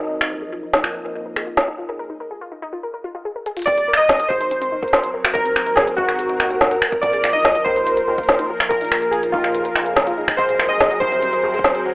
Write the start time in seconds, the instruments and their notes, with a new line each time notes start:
Already playing: acid bass D#1, string machine F#3 C4 D#4 A#4, synth texture D#5
0.21 finger snap
0.31 acid bass A#1, string machine F3, synth arpeggio sound A#4
0.42 synth arpeggio sound G#4
0.52 string machine A#3, synth arpeggio sound F4
0.63 synth arpeggio sound D#4
0.73 synth arpeggio sound D#4, snare
0.84 synth arpeggio sound F4, finger snap
0.94 synth arpeggio sound A#4
1.05 synth arpeggio sound A#4
1.15 synth arpeggio sound D#4
1.26 synth arpeggio sound A#4
1.36 synth arpeggio sound G#4, finger snap
1.47 synth arpeggio sound F4
1.57 synth arpeggio sound D#4, snare
1.68 synth arpeggio sound D#4
1.78 synth arpeggio sound F4
1.89 synth arpeggio sound A#4
1.99 synth arpeggio sound A#4
2.10 synth arpeggio sound D#4
2.20 synth arpeggio sound A#4
2.31 synth arpeggio sound G#4
2.41 synth arpeggio sound F4
2.52 synth arpeggio sound D#4
2.62 synth arpeggio sound D#4
2.73 synth arpeggio sound F4
2.83 synth arpeggio sound A#4
2.94 synth arpeggio sound A#4
3.04 synth arpeggio sound F4
3.15 synth arpeggio sound F4
3.25 synth arpeggio sound G#4
3.36 synth arpeggio sound A#4
3.46 synth arpeggio sound G#4, closed hi-hat
3.57 synth arpeggio sound F4, closed hi-hat
3.59 closed hi-hat
3.62 closed hi-hat
3.64 acid bass D#1, string machine F#3, synth arpeggio sound C4, synth keys D5, kick, closed hi-hat
3.67 synth texture A#4, closed hi-hat
3.70 closed hi-hat
3.72 closed hi-hat
3.75 closed hi-hat
3.78 synth arpeggio sound D#4, closed hi-hat
3.88 synth arpeggio sound A#4
3.93 synth keys D#5, finger snap
3.99 synth arpeggio sound A#4
4.09 synth arpeggio sound C4, snare
4.20 synth arpeggio sound A#4, closed hi-hat
4.28 acid bass G#1, string machine C4, synth arpeggio sound F#4, synth keys C5, kick
4.41 synth arpeggio sound D#4, closed hi-hat
4.51 synth arpeggio sound C4, closed hi-hat
4.62 synth arpeggio sound C4, closed hi-hat
4.72 acid bass F#1, synth arpeggio sound D#4
4.83 synth arpeggio sound A#4, kick
4.88 closed hi-hat
4.93 synth arpeggio sound A#4, snare, closed hi-hat
5.04 synth arpeggio sound C4, closed hi-hat
5.14 synth arpeggio sound A#4
5.18 string machine A#4
5.25 synth arpeggio sound F#4, finger snap, closed hi-hat
5.33 acid bass D#1, synth arpeggio sound D#4, synth keys A#4, kick, closed hi-hat
5.45 synth arpeggio sound C4, closed hi-hat
5.56 synth arpeggio sound C4, finger snap
5.66 synth arpeggio sound D#4, closed hi-hat
5.75 synth keys G#4, synth arpeggio sound A#4, snare, closed hi-hat
5.87 synth arpeggio sound A#4, closed hi-hat
5.96 acid bass G#1, synth arpeggio sound C4, synth keys F#4, kick
6.08 synth arpeggio sound A#4, finger snap, closed hi-hat
6.19 synth arpeggio sound F#4, closed hi-hat
6.29 synth arpeggio sound D#4, closed hi-hat
6.40 acid bass D#2, synth arpeggio sound C4, finger snap
6.50 synth arpeggio sound C4, closed hi-hat
6.61 synth arpeggio sound D#4, snare, closed hi-hat
6.71 synth arpeggio sound A#4, closed hi-hat
6.82 synth arpeggio sound A#4, finger snap
6.92 synth arpeggio sound C4, kick, closed hi-hat
7.01 acid bass A#1, string machine F3, synth arpeggio sound A#4, synth keys D5, kick, closed hi-hat
7.13 synth arpeggio sound G#4, closed hi-hat
7.24 synth arpeggio sound F4, finger snap
7.33 synth arpeggio sound D#4, synth keys D#5
7.42 string machine A#3, synth arpeggio sound D#4, snare, closed hi-hat
7.55 synth arpeggio sound F4, closed hi-hat
7.64 acid bass D#2, synth arpeggio sound A#4, synth keys C5, kick
7.76 synth arpeggio sound A#4, closed hi-hat
7.87 synth arpeggio sound D#4, closed hi-hat
7.97 synth arpeggio sound A#4, closed hi-hat
8.08 acid bass D#2, synth arpeggio sound G#4
8.18 synth arpeggio sound F4, kick, closed hi-hat
8.24 closed hi-hat
8.29 synth arpeggio sound D#4, snare, closed hi-hat
8.34 closed hi-hat
8.39 synth arpeggio sound D#4, closed hi-hat
8.47 synth arpeggio sound F4, string machine G#4
8.60 synth arpeggio sound A#4, finger snap, closed hi-hat
8.69 acid bass A#1, synth keys A#4, synth arpeggio sound A#4, kick, closed hi-hat
8.81 synth arpeggio sound D#4, closed hi-hat
8.85 closed hi-hat
8.88 finger snap, closed hi-hat
8.92 synth arpeggio sound A#4, closed hi-hat
8.95 closed hi-hat
8.99 synth arpeggio sound G#4, closed hi-hat
9.02 closed hi-hat
9.11 synth arpeggio sound F4, synth keys G#4, closed hi-hat
9.23 synth arpeggio sound D#4, closed hi-hat
9.32 acid bass D#2, synth arpeggio sound D#4, synth keys F4, kick
9.44 synth arpeggio sound F4, finger snap, closed hi-hat
9.55 synth arpeggio sound A#4, closed hi-hat
9.65 synth arpeggio sound A#4, closed hi-hat
9.76 acid bass F1, synth arpeggio sound D#4, finger snap
9.86 synth arpeggio sound A#4, closed hi-hat
9.97 synth arpeggio sound G#4, snare, closed hi-hat
10.07 synth arpeggio sound F4, closed hi-hat
10.18 synth arpeggio sound D#4
10.28 synth arpeggio sound D#4, finger snap, kick, closed hi-hat
10.32 closed hi-hat
10.35 acid bass G#1, synth keys C5, synth arpeggio sound D#5, kick, closed hi-hat
10.38 string machine F#3, closed hi-hat
10.42 closed hi-hat
10.46 synth arpeggio sound G#4, closed hi-hat
10.49 closed hi-hat
10.59 synth arpeggio sound G#4, finger snap
10.69 synth arpeggio sound C4, synth keys D#5
10.80 synth arpeggio sound G#4, snare, closed hi-hat
10.85 string machine C4
10.91 synth arpeggio sound F#4, closed hi-hat
11.00 acid bass C2, synth arpeggio sound D#4, synth keys C5, kick
11.12 synth arpeggio sound C4, closed hi-hat
11.22 synth arpeggio sound C4, closed hi-hat
11.33 synth arpeggio sound D#5, closed hi-hat
11.43 acid bass C2, synth arpeggio sound G#4
11.54 synth arpeggio sound G#4, closed hi-hat
11.59 kick
11.64 synth arpeggio sound C4, snare, closed hi-hat
11.75 synth arpeggio sound G#4, closed hi-hat
11.85 synth arpeggio sound F#4